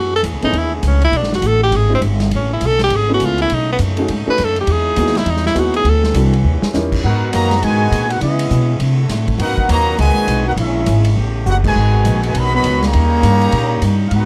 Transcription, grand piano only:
0.42 0.52 A3 medium
0.42 0.53 B3 medium
0.42 0.53 C#4 medium
0.42 0.53 E4 medium
0.42 0.53 G#4 medium
1.89 2.00 G#3 medium
1.89 2.00 C4 medium
1.89 2.00 D4 medium
1.89 2.00 E4 medium
1.89 2.01 G4 medium
3.09 3.47 A3 medium
3.09 3.47 B3 medium
3.09 3.47 C#4 medium
3.09 3.47 E4 medium
3.09 3.48 G#4 medium
3.97 4.07 A3 medium
3.97 4.08 C#4 medium
3.97 4.08 D#4 medium
3.97 4.08 F#4 medium
3.97 4.08 G#4 medium
4.27 4.37 A3 medium
4.27 4.37 C#4 medium
4.27 4.37 D#4 medium
4.27 4.37 F#4 medium
4.27 4.37 G#4 medium
4.97 5.13 B3 medium
4.97 5.13 D#4 medium
4.97 5.14 E4 medium
4.97 5.14 F#4 medium
4.97 5.14 G#4 medium
5.54 5.85 B3 medium
5.54 5.85 D#4 medium
5.54 5.85 E4 medium
5.54 5.85 F#4 medium
5.54 5.85 G#4 medium
6.15 6.31 C4 medium
6.15 6.31 D4 medium
6.15 6.31 E4 medium
6.15 6.32 F#4 medium
6.15 6.32 A4 medium
6.74 7.03 C#4 medium
6.74 7.03 D#4 medium
6.74 7.04 E4 medium
6.74 7.04 G4 medium
6.74 7.04 A#4 medium

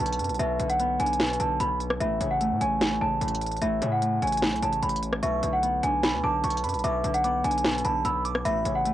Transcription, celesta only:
0.00 0.36 A5 medium
0.39 0.68 E5 loud
0.70 0.98 F#5 medium
1.00 1.38 G#5 medium
1.40 1.58 A5 medium
1.60 1.78 B5 medium
2.01 2.29 E5 loud
2.31 2.59 F#5 medium
2.61 2.99 G#5 medium
3.01 3.58 A5 medium
3.62 3.90 E5 loud
3.92 4.20 F#5 medium
4.22 4.60 G#5 medium
4.62 4.80 A5 medium
4.83 5.00 B5 medium
5.23 5.51 E5 loud
5.53 5.81 F#5 medium
5.83 6.21 G#5 medium
6.24 6.80 A5 medium
6.84 7.12 E5 loud
7.14 7.42 F#5 medium
7.44 7.82 G#5 medium
7.85 8.02 A5 medium
8.05 8.22 B5 medium
8.45 8.73 E5 loud
8.75 8.94 F#5 medium

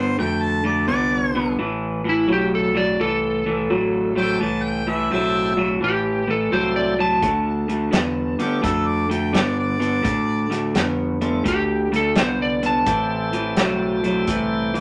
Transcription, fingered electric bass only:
0.00 0.17 G2 medium
0.20 0.88 F2 medium
0.89 1.57 C2 medium
1.60 2.28 A1 medium
2.30 2.98 B1 medium
3.00 3.68 C2 medium
3.71 4.39 A1 medium
4.41 5.09 C2 medium
5.12 5.80 B1 medium
5.82 6.50 A1 medium
6.52 7.20 C2 medium
7.22 7.91 D2 medium
7.93 8.37 E2 medium
8.40 muted fingered electric bass stroke soft
8.64 9.32 F2 medium
9.34 10.03 G2 medium
10.05 10.73 A2 medium
10.75 11.43 F2 medium
11.46 12.14 D2 medium
12.16 12.85 C2 medium
12.87 13.55 A1 medium
13.57 14.26 B1 medium
14.28 14.80 C2 medium

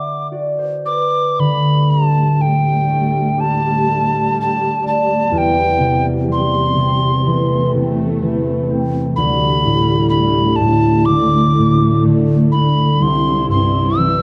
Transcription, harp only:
0.00 1.17 D3 medium
0.00 1.08 A3 soft
0.00 0.44 A4 soft
0.00 0.32 D5 soft
0.00 1.50 E5 soft
0.00 1.13 F#5 soft
0.00 0.20 A5 soft
0.31 2.75 F#4 soft
0.31 2.17 D5 soft
0.58 0.92 C5 soft
0.86 2.91 B4 soft
1.39 5.29 D3 soft
1.91 2.89 A3 soft
2.41 4.60 A4 soft
2.89 3.87 A3 soft
3.38 4.34 G4 soft
3.88 7.21 A3 soft
4.35 6.70 G4 soft
4.82 6.67 D5 soft
5.32 9.22 E2 medium
5.80 6.76 C3 soft
6.28 9.22 G3 soft
6.77 7.73 C3 soft
7.26 7.79 E3 medium
7.74 9.22 C3 medium
8.22 9.22 E3 medium
8.70 11.70 C4 soft
9.18 13.05 D2 medium
9.65 10.60 A2 soft
10.12 13.44 A3 soft
10.61 11.12 A2 medium
11.08 11.61 D3 medium
11.58 12.09 A2 soft
12.05 13.05 D3 soft
12.54 14.22 D4 medium
13.01 14.22 C2 medium
13.48 14.22 G2 soft
13.98 14.22 E3 soft

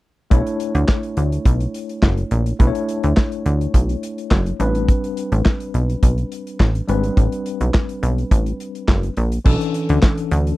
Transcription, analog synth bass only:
0.31 0.43 B1 loud
0.75 0.85 D2 loud
1.17 1.39 D2 medium
1.45 1.67 B1 loud
2.03 2.24 F#1 loud
2.31 2.53 A#1 medium
2.60 2.71 B1 loud
3.04 3.14 D2 medium
3.46 3.67 D2 medium
3.74 3.96 B1 medium
4.31 4.53 F#1 loud
4.60 4.93 A1 loud
5.32 5.42 A1 loud
5.74 5.96 B1 medium
6.03 6.24 B1 medium
6.60 6.82 A1 medium
6.89 7.10 G#1 medium
7.17 7.29 A1 medium
7.61 7.71 B1 medium
8.03 8.24 B1 medium
8.31 8.53 A1 medium
8.88 9.10 F#1 loud
9.17 9.39 A#1 medium
9.46 9.57 B1 medium
9.90 10.00 D2 loud
10.31 10.53 D2 medium

